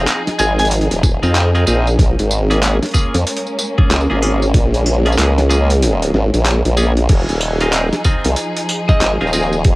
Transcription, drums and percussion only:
0.07 clap, closed hi-hat, tambourine
0.27 snare, closed hi-hat, tambourine
0.39 tambourine
0.59 closed hi-hat, tambourine
0.60 tambourine
0.65 closed hi-hat, tambourine
0.71 closed hi-hat, tambourine
0.78 closed hi-hat, tambourine
0.82 tambourine
0.91 closed hi-hat, tambourine
1.03 kick, snare, tambourine
1.23 tambourine
1.35 clap, closed hi-hat, tambourine
1.55 tambourine
1.67 tambourine
1.87 tambourine
1.99 kick, closed hi-hat, tambourine
2.19 closed hi-hat, tambourine
2.31 tambourine
2.51 closed hi-hat, tambourine
2.63 clap, closed hi-hat, tambourine
2.83 snare, closed hi-hat, tambourine
2.86 closed hi-hat
2.89 closed hi-hat
2.91 kick, closed hi-hat, tambourine
3.15 closed hi-hat, tambourine
3.27 closed hi-hat, tambourine
3.37 closed hi-hat
3.47 tambourine
3.59 tambourine
3.78 kick
3.91 clap, closed hi-hat, tambourine
4.01 tambourine
4.23 tambourine
4.42 tambourine
4.54 kick, closed hi-hat, tambourine
4.74 closed hi-hat, tambourine
4.86 tambourine
5.06 closed hi-hat
5.12 tambourine
5.19 clap, closed hi-hat, tambourine
5.38 snare, closed hi-hat, tambourine
5.50 clap, tambourine
5.70 closed hi-hat, tambourine
5.82 closed hi-hat, tambourine
6.02 closed hi-hat, tambourine
6.14 snare
6.34 closed hi-hat, tambourine
6.46 clap, closed hi-hat, tambourine
6.65 closed hi-hat, tambourine
6.77 tambourine
6.97 closed hi-hat
7.09 kick, closed hi-hat, tambourine, crash
7.29 closed hi-hat, tambourine
7.41 tambourine
7.61 closed hi-hat, tambourine
7.73 clap, closed hi-hat, tambourine
7.93 snare, closed hi-hat, tambourine
8.04 kick, tambourine
8.24 closed hi-hat, tambourine
8.36 closed hi-hat, tambourine
8.56 closed hi-hat, tambourine
8.69 tambourine
8.89 kick, tambourine
9.01 clap, closed hi-hat, tambourine
9.21 tambourine
9.27 tambourine
9.33 tambourine
9.52 tambourine
9.64 kick, closed hi-hat, tambourine

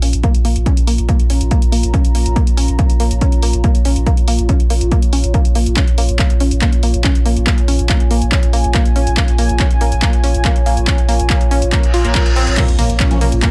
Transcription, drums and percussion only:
0.02 open hi-hat
0.13 closed hi-hat
0.23 kick, closed hi-hat
0.35 closed hi-hat
0.45 open hi-hat
0.56 closed hi-hat
0.66 kick, closed hi-hat
0.77 closed hi-hat
0.87 open hi-hat
0.98 closed hi-hat
1.09 kick, closed hi-hat
1.20 closed hi-hat
1.30 open hi-hat
1.41 closed hi-hat
1.51 kick, closed hi-hat
1.62 closed hi-hat
1.72 open hi-hat
1.83 closed hi-hat
1.94 kick, closed hi-hat
2.05 closed hi-hat
2.15 open hi-hat
2.26 closed hi-hat
2.36 kick, closed hi-hat
2.47 closed hi-hat
2.57 open hi-hat
2.68 closed hi-hat
2.79 kick, closed hi-hat
2.90 closed hi-hat
3.00 open hi-hat
3.11 closed hi-hat
3.21 kick, closed hi-hat
3.32 closed hi-hat
3.42 open hi-hat
3.53 closed hi-hat
3.64 kick, closed hi-hat
3.75 closed hi-hat
3.85 open hi-hat
3.96 closed hi-hat
4.06 kick, closed hi-hat
4.17 closed hi-hat
4.28 open hi-hat
4.39 closed hi-hat
4.49 kick, closed hi-hat
4.60 closed hi-hat
4.70 open hi-hat
4.81 closed hi-hat
4.91 kick, closed hi-hat
5.02 closed hi-hat
5.13 open hi-hat
5.24 closed hi-hat
5.34 kick, closed hi-hat
5.45 closed hi-hat
5.55 open hi-hat
5.66 closed hi-hat
5.77 kick, clap, closed hi-hat
5.88 closed hi-hat
5.98 open hi-hat
6.09 closed hi-hat
6.19 kick, clap, closed hi-hat
6.30 closed hi-hat
6.40 open hi-hat
6.51 closed hi-hat
6.62 kick, clap, closed hi-hat
6.72 closed hi-hat
6.83 open hi-hat
6.94 closed hi-hat
7.04 kick, clap, closed hi-hat
7.15 closed hi-hat
7.26 open hi-hat
7.37 closed hi-hat
7.47 kick, clap, closed hi-hat
7.58 closed hi-hat
7.68 open hi-hat
7.79 closed hi-hat
7.89 kick, clap, closed hi-hat
8.00 closed hi-hat
8.11 open hi-hat
8.22 closed hi-hat
8.32 kick, clap, closed hi-hat
8.43 closed hi-hat
8.53 open hi-hat
8.64 closed hi-hat
8.75 kick, clap, closed hi-hat
8.85 closed hi-hat
8.96 open hi-hat
9.07 closed hi-hat
9.17 kick, clap, closed hi-hat
9.28 closed hi-hat
9.38 open hi-hat
9.49 closed hi-hat
9.60 kick, clap, closed hi-hat
9.71 closed hi-hat
9.81 open hi-hat
9.92 closed hi-hat
10.02 kick, clap, closed hi-hat
10.13 closed hi-hat
10.24 open hi-hat
10.34 closed hi-hat
10.45 kick, clap, closed hi-hat
10.56 closed hi-hat
10.66 open hi-hat
10.77 closed hi-hat
10.87 kick, clap, closed hi-hat
10.98 closed hi-hat
11.09 open hi-hat
11.20 closed hi-hat
11.30 kick, clap, closed hi-hat
11.41 closed hi-hat
11.51 open hi-hat
11.62 closed hi-hat
11.72 kick, clap, closed hi-hat
11.83 closed hi-hat
11.94 open hi-hat
12.05 closed hi-hat
12.15 kick, clap, closed hi-hat
12.26 closed hi-hat
12.36 open hi-hat
12.47 closed hi-hat
12.57 kick, clap, closed hi-hat, mid tom, crash, ride
12.68 closed hi-hat, ride
12.79 mid tom, open hi-hat, ride
12.90 closed hi-hat, ride
13.00 kick, clap, closed hi-hat, mid tom, ride
13.11 closed hi-hat, ride
13.21 mid tom, open hi-hat, ride
13.32 closed hi-hat, ride
13.42 kick, clap, closed hi-hat, mid tom, ride

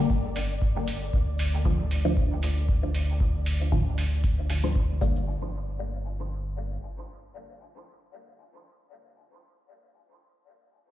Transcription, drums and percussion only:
0.10 kick, shaker
0.36 open hi-hat, shaker
0.50 shaker
0.62 kick, shaker
0.87 open hi-hat, shaker
1.02 shaker
1.12 kick, shaker
1.38 open hi-hat, shaker
1.54 shaker
1.65 kick, shaker
1.91 open hi-hat, shaker
2.05 shaker
2.17 kick, shaker
2.42 open hi-hat, shaker
2.57 shaker
2.68 kick, shaker
2.94 open hi-hat, shaker
3.08 shaker
3.20 kick, shaker
3.45 open hi-hat, shaker
3.60 shaker
3.72 kick, shaker
3.98 open hi-hat, shaker
4.12 shaker
4.23 kick, open hi-hat, shaker
4.50 open hi-hat, shaker
4.63 shaker
4.75 kick, shaker
5.01 kick, shaker
5.16 shaker

